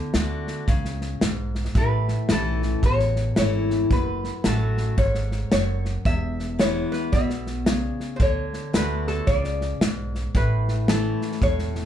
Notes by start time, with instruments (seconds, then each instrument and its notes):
Already playing: steel-string acoustic guitar D3
0.14 upright bass D2, steel-string acoustic guitar D3 A3 D4 F#4, snare, hi-hat pedal
0.47 snare
0.68 upright bass C#2, steel-string acoustic guitar C#3, kick, snare
0.85 snare
1.01 snare
1.21 upright bass B1, steel-string acoustic guitar G#2, snare, hi-hat pedal
1.55 snare
1.65 snare
1.75 upright bass A1, steel-string acoustic guitar A2, resonator guitar played with a steel bar B4, kick, snare
2.08 snare
2.29 upright bass B1, steel-string acoustic guitar E3 A3 C#4 E4, resonator guitar played with a steel bar A4, snare, hi-hat pedal
2.62 snare
2.82 upright bass A1, steel-string acoustic guitar E2, resonator guitar played with a steel bar C#5, kick, snare
2.99 snare
3.16 snare
3.36 upright bass G#1, steel-string acoustic guitar E3 A3 C#4 E4, resonator guitar played with a steel bar C#5, snare, hi-hat pedal
3.70 snare
3.91 upright bass F#1, steel-string acoustic guitar F#2, resonator guitar played with a steel bar B4, kick, snare
4.24 snare
4.44 upright bass A1, steel-string acoustic guitar F#3 A3 C#4 F#4, resonator guitar played with a steel bar A4, snare, hi-hat pedal
4.77 snare
4.98 upright bass G#1, steel-string acoustic guitar G#2, resonator guitar played with a steel bar C#5, kick, snare
5.15 snare
5.32 snare
5.52 upright bass F#1, steel-string acoustic guitar F#2, resonator guitar played with a steel bar C#5, snare, hi-hat pedal
5.85 snare
6.05 upright bass E1, steel-string acoustic guitar E2, resonator guitar played with a steel bar E5, kick, snare
6.39 snare
6.59 steel-string acoustic guitar E3 G#3 B3 E4, resonator guitar played with a steel bar C#5, snare, hi-hat pedal
6.92 resonator guitar played with a steel bar B4, snare
7.12 upright bass B1, steel-string acoustic guitar B2, resonator guitar played with a steel bar E5, kick, snare
7.30 snare
7.47 snare
7.66 steel-string acoustic guitar C#3, snare, hi-hat pedal
7.73 resonator guitar played with a steel bar D5
8.00 snare
8.16 upright bass D2, steel-string acoustic guitar D3, resonator guitar played with a steel bar C5, kick, snare
8.22 resonator guitar played with a steel bar C#5
8.53 snare
8.73 upright bass D2, steel-string acoustic guitar D3 A3 D4 F#4, resonator guitar played with a steel bar B4, snare, hi-hat pedal
9.07 resonator guitar played with a steel bar A4, snare
9.27 upright bass C#2, steel-string acoustic guitar C#3, resonator guitar played with a steel bar D5, kick, snare
9.44 snare
9.61 snare
9.81 upright bass B1, steel-string acoustic guitar G#2, snare, hi-hat pedal
10.15 snare
10.35 upright bass A1, steel-string acoustic guitar A2, resonator guitar played with a steel bar B4, kick, snare
10.68 snare
10.88 steel-string acoustic guitar E3 A3 C#4 E4, resonator guitar played with a steel bar A4, snare, hi-hat pedal
11.22 snare
11.32 snare
11.41 upright bass E1, steel-string acoustic guitar A2, resonator guitar played with a steel bar C#5, kick, snare
11.59 snare
11.75 snare